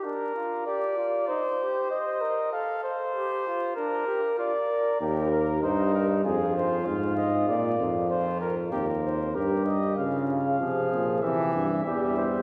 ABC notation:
X:1
M:4/4
L:1/8
Q:1/4=96
K:Eb
V:1 name="Trumpet"
B2 d2 c2 e2 | f c3 B2 d2 | G B c B A c f e | d z c B G c B e |
[K:Bbdor] f f3 =e2 e2 |]
V:2 name="Flugelhorn"
D F G F E G c B | =A z G F D G F B | B2 E2 F4- | F2 F2 B2 G2 |
[K:Bbdor] F2 A2 G2 G c |]
V:3 name="Trombone" clef=bass
z8 | z8 | z8 | z8 |
[K:Bbdor] D,2 F,2 =E,2 G,2 |]
V:4 name="Bass trombone" clef=bass
z8 | z8 | E,,2 G,,2 F,,2 A,,2 | B,, F,,3 E,,2 G,,2 |
[K:Bbdor] D,2 C, B,, C, G,, =E,,2 |]